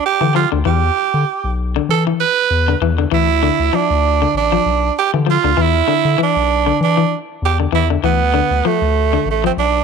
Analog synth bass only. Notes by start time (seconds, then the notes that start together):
0.21 D3
0.53 D2
0.66 E2
1.14 D3
1.44 B1
1.89 E3
2.51 E2
2.81 E2
3.12 D2
3.59 D2
3.90 D2
4.34 A1
4.66 B1
5.14 D3
5.44 D2
5.58 E2
6.05 D3
6.36 B1
6.81 E3
7.42 E2
7.73 E2
8.03 D2
8.51 D2
8.82 D2
9.25 A1
9.57 B1